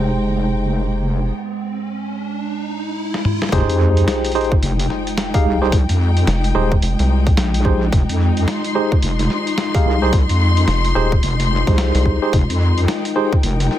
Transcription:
Already playing: F1 G#3 D#4 G4 G#4 C5 G5 C6, riser
3.14 snare
3.25 mid tom
3.42 snare
3.49 F1 G#3 D#4 F4, kick, snare, sub drop
3.53 D#4 G4 G#4 C5, snare, closed hi-hat
3.58 snare
3.62 snare
3.69 F2, closed hi-hat
3.80 G#3
3.97 closed hi-hat
4.06 G5, snare, closed hi-hat
4.25 closed hi-hat
4.26 closed hi-hat
4.32 D#4 G4 G#4 C5, closed hi-hat
4.35 closed hi-hat
4.41 closed hi-hat
4.44 closed hi-hat
4.52 kick
4.62 F1, closed hi-hat
4.79 closed hi-hat
4.90 snare
5.07 closed hi-hat
5.18 snare, closed hi-hat
5.34 D#4 G4 G#4 F5, kick, closed hi-hat
5.45 C2
5.62 D#4 G4 G#4 C5
5.72 kick, closed hi-hat
5.89 F2, closed hi-hat
6.17 closed hi-hat
6.27 F1, snare, closed hi-hat
6.44 closed hi-hat
6.55 D#1 D#4 G4 G#4 C5
6.72 kick
6.82 F1, closed hi-hat
6.99 C2, closed hi-hat
7.27 kick, closed hi-hat
7.37 A#1, snare, closed hi-hat
7.54 closed hi-hat
7.65 D#4 G4 G#4 C5, kick
7.92 F1, kick, closed hi-hat
8.09 F2, closed hi-hat
8.37 closed hi-hat
8.47 C6, snare, closed hi-hat
8.64 closed hi-hat
8.75 D#4 G4 G#4 C5
8.92 kick
9.02 F1, closed hi-hat
9.19 closed hi-hat
9.30 snare
9.47 closed hi-hat
9.58 snare, closed hi-hat
9.74 D#4 G4 G#4 F5, kick, closed hi-hat
9.85 C2
10.02 D#4 G4 G#4 C5
10.13 kick, closed hi-hat
10.29 F2, closed hi-hat
10.57 closed hi-hat
10.68 F1, snare, closed hi-hat
10.85 closed hi-hat
10.95 D#1 D#4 G4 G#4 C5
11.12 kick
11.23 F1, closed hi-hat
11.40 closed hi-hat
11.67 C2 D#4 G4 G#4 C5, kick, closed hi-hat
11.78 snare, closed hi-hat
11.95 C2, closed hi-hat
12.06 kick
12.22 D#4 G4 G#4 C5
12.33 F1 A#4, kick, closed hi-hat
12.50 F2, closed hi-hat
12.78 closed hi-hat
12.87 G5, snare, closed hi-hat
13.05 closed hi-hat
13.16 D#4 G4 G#4 C5
13.33 kick
13.43 F1, closed hi-hat
13.60 closed hi-hat
13.71 snare

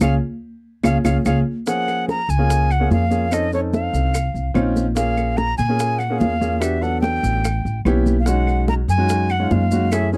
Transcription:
0.01 C#2 C#4 F4 G#4 F5, low bongo, high conga, claves, maracas
0.83 C#2 C#4 F4 G#4 F5, low bongo, high conga, claves, maracas
1.04 C#2 C#4 F4 G#4 F5, low bongo, high conga, claves, maracas
1.25 C#2 C#4 F4 G#4 F5, low bongo, high conga, claves, maracas
1.66 F3 A#3 C#4 G#4 F#5, high bongo, high conga, maracas
1.88 high bongo, high conga, claves, maracas
2.08 A#5, high bongo, high conga, maracas
2.29 C#2 G#5, high bongo, maracas
2.38 A#3 C#4 F4 G#4
2.50 high bongo, high conga, maracas
2.70 F#5, high conga, claves, maracas
2.80 A#3 C#4 F4 G#4
2.90 F2 F5, high bongo, low bongo, high conga, maracas
3.10 A#3 C#4 F4 G#4, high bongo, maracas
3.31 C4 C#4 D#4 A4 D#5, high bongo, high conga, claves, maracas
3.52 C4 C#4 D#4 A4 C#5, high bongo, high conga, maracas
3.73 F5, high bongo, high conga, maracas
3.93 C2, high bongo, high conga, maracas
4.14 high bongo, high conga, claves, maracas
4.34 C2, high conga, maracas
4.54 A#1 C4 C#4 D#4 F4, high bongo, low bongo, high conga, claves, maracas
4.76 high bongo, high conga, maracas
4.95 A#3 C#4 F4 G#4 F5, high bongo, high conga, maracas
5.17 high bongo, high conga, claves, maracas
5.37 A#5, high bongo, high conga, maracas
5.58 A#2 G#5, high bongo, maracas
5.68 A#3 C#4 F4 G#4
5.79 high bongo, high conga, maracas
5.99 F#5, high conga, claves, maracas
6.10 A#3 C#4 F4 G#4
6.19 E2 F5, high bongo, low bongo, high conga, maracas
6.40 A#3 C#4 F4 G#4, high bongo, high conga, maracas
6.60 B3 D4 F#4 G4 E5, high bongo, high conga, claves, maracas
6.81 F#3 B3 D4 A4 F#5, high bongo, high conga, maracas
7.01 G5, high bongo, high conga, maracas
7.23 A1, high bongo, high conga, maracas
7.44 high bongo, high conga, claves, maracas
7.65 A1, high conga, maracas
7.85 B1 B3 C#4 E4 G4, high bongo, low bongo, high conga, claves, maracas
8.06 high bongo, high conga, maracas
8.20 F5
8.26 G#3 C#4 D#4 F#4 F#5, high bongo, high conga, maracas
8.47 high bongo, high conga, claves, maracas
8.68 A#5, high bongo, high conga, maracas
8.88 F#2 G#5, high bongo, maracas
8.98 G#3 C#4 D#4 F#4
9.09 high bongo, high conga, maracas
9.29 F#5, high conga, claves, maracas
9.40 G#3 C#4 D#4 F4
9.50 F#2 F5, high bongo, low bongo, high conga, maracas
9.71 G#3 C#4 D#4 F#4, high bongo, high conga, maracas
9.92 A3 C#4 E4 G#4 E5, high bongo, high conga, claves, maracas
10.12 A3 C#4 E4 G#4 C#5, high bongo, high conga, maracas

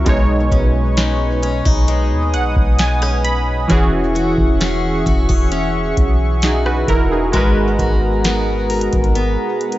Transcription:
Already playing: F#3 C#6
0.05 B1 B2 G#3 D#4 B4 D#5 G#5, kick, closed hi-hat
0.09 C#5
0.51 B1 C#4, kick, closed hi-hat
0.97 G#3 C#4 D#4, snare, closed hi-hat
1.42 C#4, closed hi-hat
1.65 B1 D#4, kick
1.88 G#3 D#6, closed hi-hat
2.11 D#2
2.34 B1 F#5, closed hi-hat
2.56 B1, kick
2.79 B3 G#5, snare, closed hi-hat
3.02 C#4, cross-stick
3.24 B5, closed hi-hat
3.68 E1 E3 C#4 F#4 G#4 E5 F#5 C#6, kick, closed hi-hat
3.72 G#4
4.15 F#4, closed hi-hat
4.38 E1, kick
4.60 C#4 F#4 G#4, snare, closed hi-hat
5.06 E1 F#4, kick, closed hi-hat
5.29 G#4, kick
5.52 C#4, closed hi-hat
5.97 B1, kick, closed hi-hat
6.42 D#4 F#4 G#4, snare, closed hi-hat
6.66 F#4 B4, cross-stick
6.88 E1 E4 A#4, kick, closed hi-hat
7.11 D#4 G#4
7.32 G#1 G#3 B3 F#4 G#4 A#4 F#5 A#5, kick, closed hi-hat
7.36 B4
7.79 G#1 F#4, kick, closed hi-hat
8.24 B3 F#4 A#4, snare, closed hi-hat
8.70 A#4, closed hi-hat, open hi-hat
8.81 closed hi-hat
8.93 G#1, kick, closed hi-hat
9.04 closed hi-hat
9.15 B3, closed hi-hat
9.61 closed hi-hat
9.72 closed hi-hat

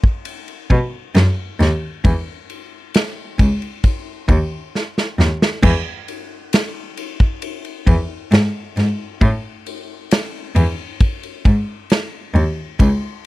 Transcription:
0.04 kick
0.25 ride
0.48 ride
0.70 B2, kick, ride
1.15 F#2, snare, ride
1.60 D#2, snare, ride
2.05 E2, kick, ride
2.50 ride
2.94 snare, ride
3.39 C#2, kick, ride
3.62 ride
3.84 kick, ride
4.28 D#2, kick, ride
4.75 snare
4.98 snare
5.18 D#2, snare
5.42 snare
5.63 E2, kick, crash
6.08 ride
6.53 snare, ride
6.97 ride
7.20 kick
7.42 ride
7.65 ride
7.87 E2, kick, ride
8.31 G#2, snare, ride
8.76 G#2, snare, ride
9.21 A2, kick, ride
9.66 ride
10.11 snare, ride
10.55 E2, ride
11.00 kick, ride
11.23 ride
11.45 G#2, kick, ride
11.90 snare, ride
12.34 D#2, ride
12.80 C#2, kick, ride

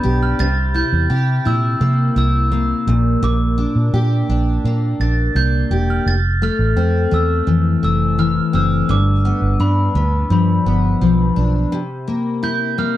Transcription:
Already playing: G2 B3 D4 G6
0.03 B1 G4
0.23 F6
0.39 C2 C3 A6
0.74 E4 G6
0.93 E2
1.10 C3 G4
1.45 A#2 E4 E6
1.81 C3 A#3
2.16 C2 E4 E6
2.52 A#3
2.87 A#1 A#2
3.23 A#1 A#2 D6
3.58 D4
3.76 A#2
3.94 A#2 G4
4.29 A#1 D4
4.64 A#2 A#3
5.00 A#1 D4 A6
5.35 C2 A#3 G6
5.70 E1 G4
5.90 F6
6.06 F1 A6
6.42 A3 F6
6.59 A1
6.77 F2 C4
7.11 E2 A3 E6
7.47 F2 E3
7.83 F1 A3 E6
8.19 E3 F6
8.53 F#1 C4 E6
8.89 G1 G2 D6
9.25 B3
9.42 G1
9.60 G2 D4 B5
9.95 D2 B3
10.30 G2 F3 B5
10.66 G1 B3
11.01 B1 F3
11.36 B1 D4
11.72 C3
12.08 A#3
12.43 E4 G6
12.78 A#3 F6

